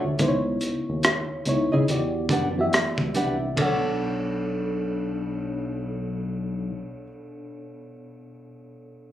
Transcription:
Already playing: B2 B3 D4 A4 C#5 E5
0.04 D2
0.19 C#2 C#3 B3 D#4 E4 C5, kick, closed hi-hat
0.28 C#5
0.61 closed hi-hat
0.89 D#2
1.03 cross-stick, closed hi-hat
1.45 C#2 C#3 B3 D#4 E4 C#5, closed hi-hat
1.72 C#3 B3 E4 G#4 D#5
1.88 E2 E3 B3 F#4 G4 D5, closed hi-hat
2.29 F#2 D4 G4 B4 F#5, kick, closed hi-hat
2.57 E3 B3 F#4 G4 E5
2.73 muted nylon-string guitar stroke, cross-stick, closed hi-hat
2.98 C#2, kick
3.14 C2 D4 G4 B4 F#5, closed hi-hat
3.53 B2 B3 D4
3.57 B1 D4 A4 C#5, kick, ride bell
3.61 A4 F#5
3.65 C#5

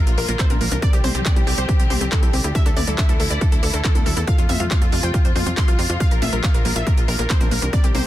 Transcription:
Already playing: D3 F3 A#3 F4, impact
0.07 A#1 F4, closed hi-hat
0.18 A#1 A#4, open hi-hat
0.28 A#1 A#3 A#4, closed hi-hat
0.39 A#3 C5, kick, clap, closed hi-hat
0.50 A#1 D4 A#4, closed hi-hat, mid tom
0.61 A#1 A#3 A#4, open hi-hat
0.72 C2 D4 A#4, closed hi-hat
0.82 G3 C4 G4 D5, kick, closed hi-hat
0.93 C2 C4 G4, closed hi-hat
1.04 C2 C5, open hi-hat, mid tom
1.15 C2 G4 C5, closed hi-hat
1.25 C4 D5, kick, clap, closed hi-hat
1.36 C2 E4 G4, closed hi-hat
1.47 C2 C4 G4, open hi-hat
1.58 C2 G4 C5, closed hi-hat
1.69 C4 G4, kick, closed hi-hat
1.79 C2 G4, closed hi-hat
1.90 C2 G4 C5, open hi-hat, mid tom
2.01 C2 C4 G4, closed hi-hat
2.12 C4 A4, kick, clap, closed hi-hat
2.23 C2 E4 G4, closed hi-hat
2.33 C2 C4 G4, open hi-hat
2.44 D2 E4 G4, closed hi-hat
2.55 E3 A3 D4 E4 E5, kick, closed hi-hat
2.66 D2 D4 A4, closed hi-hat
2.77 D2 D5, open hi-hat, mid tom
2.87 D2 A4 D5, closed hi-hat
2.98 D4 E5, kick, clap, closed hi-hat
3.09 D2 E4 A4, closed hi-hat
3.20 D2 D4 A4, open hi-hat
3.30 D2 A4 D5, closed hi-hat
3.41 D4 A4, kick, closed hi-hat
3.52 D2 A4, closed hi-hat
3.63 D2 A4 D5, open hi-hat
3.73 D2 D4 A4, closed hi-hat
3.84 D4 A4, kick, clap, closed hi-hat
3.95 D2 E4 A4, closed hi-hat, mid tom
4.06 D2 D4 A4, open hi-hat
4.17 E2 E4 A4, closed hi-hat
4.27 C3 F3 F4 F5, kick, closed hi-hat
4.38 F2 F4, closed hi-hat
4.49 F2 E5 F5, open hi-hat, mid tom
4.60 F2 F4 F5, closed hi-hat
4.71 F4 F5, kick, clap, closed hi-hat
4.81 F2 F4 A4, closed hi-hat
4.92 F2 F4, open hi-hat
5.03 F2 C5 G5, closed hi-hat
5.14 F4, kick, closed hi-hat
5.25 F2 C5, closed hi-hat
5.35 F2 F4 C5, open hi-hat, mid tom
5.46 F2 C4 F4, closed hi-hat
5.57 F5 C6, kick, clap, closed hi-hat
5.68 C2 F4 F5, closed hi-hat
5.79 F2 F4, open hi-hat
5.90 F2 F4, closed hi-hat
6.00 D3 A#3 F5, kick, closed hi-hat
6.11 A#1 A#3 A#4, closed hi-hat
6.22 A#1 A3 E5, open hi-hat, mid tom
6.33 A#1 A#4, closed hi-hat
6.43 A#3 F5, kick, clap, closed hi-hat
6.54 A#1 D4 A#4, closed hi-hat
6.65 A#1 A#3 A#4, open hi-hat
6.76 A#1 F4 E5, closed hi-hat
6.87 A#3 A#4, kick, closed hi-hat
6.97 A#1 F4, closed hi-hat
7.08 A#1 A#4, open hi-hat
7.19 A#1 A#3 A#4, closed hi-hat
7.30 A#3 C5, kick, clap, closed hi-hat
7.41 A#1 D4 A#4, closed hi-hat, mid tom
7.51 A#1 A#3 A#4, open hi-hat
7.62 C2 D4 A#4, closed hi-hat
7.73 D3 G3 C4 G4 D5, kick, closed hi-hat
7.84 C2 C4 G4, closed hi-hat
7.95 C2 A#3 C5, open hi-hat, mid tom

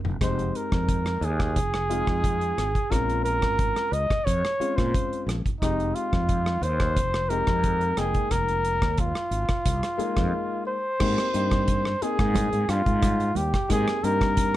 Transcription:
0.04 F1, floor tom
0.21 F1 G#3 C4 D#4 G4 C5, kick, cross-stick, closed hi-hat
0.39 closed hi-hat
0.55 A#4, closed hi-hat
0.72 F2, kick, cross-stick, closed hi-hat
0.89 kick, closed hi-hat
1.06 cross-stick, closed hi-hat
1.21 D#2 G#4, closed hi-hat
1.40 kick, cross-stick, closed hi-hat
1.56 F1, kick, closed hi-hat
1.74 cross-stick, closed hi-hat
1.89 G#3 C4 D#4 F4, closed hi-hat
2.07 F2, kick, cross-stick, closed hi-hat
2.24 kick, closed hi-hat
2.41 closed hi-hat
2.58 G#1, cross-stick, closed hi-hat
2.75 kick, closed hi-hat
2.90 A#1 G#3 C4 C#4 F4 A#4, kick, cross-stick, closed hi-hat
3.10 closed hi-hat
3.24 A#4, closed hi-hat
3.42 G#1, kick, cross-stick, closed hi-hat
3.59 kick, closed hi-hat
3.76 cross-stick, closed hi-hat
3.92 C#2 D#5, closed hi-hat
4.10 kick, cross-stick, closed hi-hat
4.25 F2 C#5, kick, closed hi-hat
4.45 cross-stick, closed hi-hat
4.60 G#3 C4 C#4 F4, muted fretless electric bass stroke, closed hi-hat
4.76 A#2 C5, kick, cross-stick, closed hi-hat
4.94 kick, closed hi-hat
5.10 muted fretless electric bass stroke, closed hi-hat
5.27 A#1, cross-stick, closed hi-hat
5.46 kick, closed hi-hat
5.61 F1 G#3 C4 D#4 G4, kick, cross-stick, closed hi-hat
5.80 closed hi-hat
5.95 F4, closed hi-hat
6.13 F2, kick, cross-stick, closed hi-hat
6.29 kick, closed hi-hat
6.46 cross-stick, closed hi-hat
6.62 D#2 C5, closed hi-hat
6.80 kick, cross-stick, closed hi-hat
6.96 F1, kick, closed hi-hat
7.14 cross-stick, closed hi-hat
7.30 G#3 C4 D#4 G4 A#4, closed hi-hat
7.47 F2, kick, cross-stick, closed hi-hat
7.64 kick, closed hi-hat
7.81 closed hi-hat
7.97 F1 G#3 A#3 D#4 G#4 G5, cross-stick, closed hi-hat
8.14 kick, closed hi-hat
8.31 F1 A#4, kick, cross-stick, closed hi-hat
8.48 closed hi-hat
8.65 closed hi-hat
8.82 D#2, kick, cross-stick, closed hi-hat
8.98 F4, kick, closed hi-hat
9.15 cross-stick, closed hi-hat
9.31 G#1, closed hi-hat
9.49 kick, cross-stick, closed hi-hat
9.65 C2, kick, closed hi-hat
9.83 cross-stick, closed hi-hat
9.97 G#3 A#3 D#4 G#4, muted fretless electric bass stroke, closed hi-hat
10.16 F2, kick, cross-stick, closed hi-hat
10.66 C5
10.99 G#2 A#3 C4 D#4 G4, kick, cross-stick, crash, muted conga
11.18 cross-stick, closed hi-hat
11.34 G2 A#3 C4 D#4 G4, closed hi-hat
11.51 kick, cross-stick, closed hi-hat
11.68 kick, closed hi-hat
11.85 cross-stick
12.02 A#3 C4 D#4 G#4, muted fretless electric bass stroke, closed hi-hat
12.19 G#2, kick, cross-stick, closed hi-hat
12.34 kick, cross-stick, closed hi-hat, muted conga, high conga
12.53 G#2, closed hi-hat
12.69 G2 F4, cross-stick, closed hi-hat
12.86 G#2, kick, closed hi-hat
13.02 kick, cross-stick, closed hi-hat, high conga
13.20 closed hi-hat
13.35 D#2 G4, closed hi-hat, muted conga, high conga
13.54 kick, cross-stick, closed hi-hat
13.69 G#2 A#3 C4 D#4 G4 G#4, kick, cross-stick, closed hi-hat, muted conga
13.88 cross-stick, closed hi-hat
14.03 G2 A#3 C4 D#4 G4 A#4, closed hi-hat
14.21 kick, cross-stick, closed hi-hat
14.37 kick, closed hi-hat

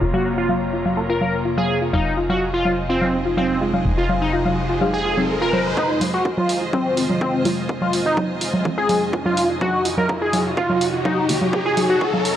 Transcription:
Already playing: F2 C3 A#3 F4 C#5 A#5
0.01 F1 F4
0.13 F#4 F5, low conga
0.37 F4
0.49 F5, low conga
0.73 F4
0.85 F5, low conga
0.97 A#3 F4 A#4
1.09 F4 A#4
1.21 F5, low conga
1.45 F4
1.57 G#4 F5, low conga
1.82 F4
1.93 F1 G#3 D#4 G#4 F5, riser, low conga
2.17 F4
2.29 F#4 D#5 F5, low conga
2.53 F4
2.62 C5 F5, low conga
2.89 C4 F4
3.02 F5, low conga
3.26 F4
3.37 C4 F5, low conga
3.61 G#3 D#4 F4 G#4
3.66 C6
3.73 F5, low conga
3.85 F1
3.97 F4
4.09 F5, low conga
4.22 D#4
4.33 F4
4.45 F5, low conga
4.69 F4
4.81 G#3 D#4 G#4 F5, low conga
4.94 G#4
5.05 F4
5.17 G#3 C4 D#4 G#4, low conga
5.41 F4 A#4
5.53 C5, low conga
5.77 F1 F2 C3 D#3 G#3 D#4 F4, kick, riser
5.89 F4
6.01 F5, open hi-hat, low conga
6.14 F#4
6.25 F4, kick
6.37 F4 F5, low conga
6.49 open hi-hat
6.62 F4
6.73 C4 F5, kick, low conga
6.97 F4, open hi-hat
7.10 F5, low conga
7.21 C4, kick
7.34 F4 G#5
7.45 F3 C4 F4 F5, open hi-hat, low conga
7.69 F1 D#4 F4, kick
7.82 F4 F5, low conga
7.93 open hi-hat
8.06 D#4 F4
8.17 kick, low conga
8.41 F4, open hi-hat
8.54 F5, low conga
8.65 F3 C4 F4, kick
8.78 F4 G#4
8.89 F5, open hi-hat, low conga
9.13 F4, kick
9.25 F4 F5, low conga
9.37 open hi-hat
9.50 F4
9.61 F1 F#4 F5, kick, low conga
9.85 F4, open hi-hat
9.97 A#4 F5, low conga
10.09 kick
10.21 F4 G#4
10.33 C#5 F5, open hi-hat, low conga
10.57 F4, kick
10.70 F5, low conga
10.81 open hi-hat
10.94 F4
11.05 D#4 F5, kick, low conga
11.29 D#3 A#3 D#4 F4, open hi-hat
11.34 A#5
11.41 F5, low conga
11.53 F1, kick
11.65 F4 G#4
11.77 F5, open hi-hat, low conga
11.89 F#4
12.01 F4, kick
12.13 F5, low conga
12.25 open hi-hat

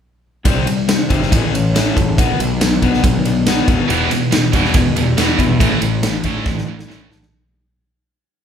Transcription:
0.45 C2 C3 G3 C4, kick, ride
0.66 C3 G3, ride
0.88 C3 G3 C4, snare, ride
1.09 G1 C3 G3 C4 E4, kick, ride
1.22 snare
1.32 A1 A2 E3 A3, kick, ride
1.53 A2 E3 C#4, ride
1.74 A2 E3 A3 E4, snare, ride
1.96 F#1 A2 E3 A4, kick, ride
2.16 B1 B2 F#3 B3, kick, ride
2.38 B1 B2 F#3, ride
2.61 B2 F#3 B3, snare, ride
2.82 B1 B2 F#3 B3 D4, kick, ride
2.94 snare
3.03 B1 B2 F#3 B3, kick, ride
3.25 B2 F#3 D4, ride
3.46 B2 F#3 B3 F#4, snare, ride
3.67 E1 E2 B2 E3, kick, ride
3.88 E1 E2 B2 E3, ride
4.10 E2 B2, ride
4.31 E2 B2 E3, snare, ride
4.53 E1 E2 B2 E3 G3, kick, ride
4.65 snare
4.74 E1 E2 B2 E3, kick, ride
4.95 E2 B2 G3, ride
5.17 E2 B2 E3 B3, snare, ride
5.38 E2 B2 E4, kick, ride
5.60 A1 A2 E3 A3, kick, ride
5.81 A1 A2 E3, ride
6.02 A2 E3 A3, snare, ride
6.24 A1 A2 E3 A3 D4, kick, ride
6.46 A1 A2 E3 A3, kick, snare
6.58 snare
6.66 A2 E3 D4
6.79 snare
6.87 A2 E3 A3 E4, snare
7.09 A1 A2 E3 A4, snare
7.22 snare

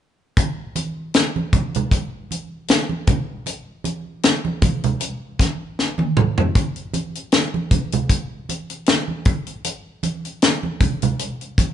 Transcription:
0.37 kick, closed hi-hat, muted conga
0.76 closed hi-hat, muted conga, high conga
1.14 snare, closed hi-hat
1.36 high conga
1.53 kick, closed hi-hat, muted conga, high conga, low conga
1.74 closed hi-hat, low conga
1.91 kick, closed hi-hat, muted conga
2.31 closed hi-hat, high conga
2.68 snare, closed hi-hat, muted conga
2.89 high conga
3.07 kick, closed hi-hat, muted conga, low conga
3.46 closed hi-hat, muted conga
3.84 closed hi-hat, high conga
4.23 snare, closed hi-hat, muted conga
4.45 high conga
4.62 kick, closed hi-hat, muted conga, high conga, low conga
4.84 closed hi-hat, low conga
5.00 closed hi-hat, muted conga
5.39 kick, snare, closed hi-hat, muted conga, high conga
5.79 snare
5.98 high tom, high conga
6.17 mid tom, muted conga, low conga
6.38 floor tom
6.55 kick, closed hi-hat, muted conga
6.76 closed hi-hat
6.93 closed hi-hat, muted conga, high conga
7.15 closed hi-hat
7.32 snare, closed hi-hat
7.54 high conga
7.71 kick, closed hi-hat, high conga, low conga
7.92 closed hi-hat, low conga
8.09 kick, closed hi-hat, muted conga
8.49 closed hi-hat, high conga
8.70 closed hi-hat
8.86 snare, closed hi-hat
9.08 high conga
9.25 kick, closed hi-hat, muted conga
9.47 closed hi-hat
9.64 closed hi-hat, muted conga
10.03 closed hi-hat, muted conga, high conga
10.25 closed hi-hat
10.42 snare, closed hi-hat, muted conga
10.63 high conga
10.80 kick, closed hi-hat, high conga, low conga
11.02 closed hi-hat, low conga
11.19 closed hi-hat
11.41 closed hi-hat
11.58 kick, closed hi-hat, muted conga, high conga

